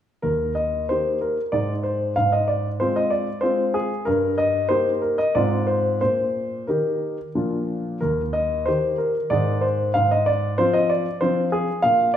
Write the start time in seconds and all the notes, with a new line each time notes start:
0.22 D#2 A#4
0.55 D#5
0.89 A#3 D#4 G4 C5
1.21 A#4
1.52 G#2 G#3 D#4 G#4 D5
1.83 C5
2.16 G#2 F5
2.32 D#5
2.48 D5
2.80 G#3 C4 F4 C5
2.96 D#5
3.10 D5
3.41 G#3 C4 F4 C5
3.74 G#4
4.05 G2 A#4
4.38 D#5
4.69 A#3 D#4 G4 C5
5.02 A#4
5.18 D#5
5.35 G#2 G#3 C4 F4 D5
5.67 C5
6.01 A#2 C5
6.67 D#3 D#4 G4 A#4
7.35 A#2 F3 D4 F4
8.01 D#2 A#4
8.33 D#5
8.66 D#3 D#4 G4 C5
8.98 A#4
9.30 G#2 D#3 D#4 G#4 D5
9.61 C5
9.94 G#2 F5
10.11 D#5
10.26 D5
10.58 F3 C4 F4 C5
10.73 D#5
10.90 D5
11.21 F3 C4 F4 C5
11.52 G#4
11.82 A#2 F5
12.14 D5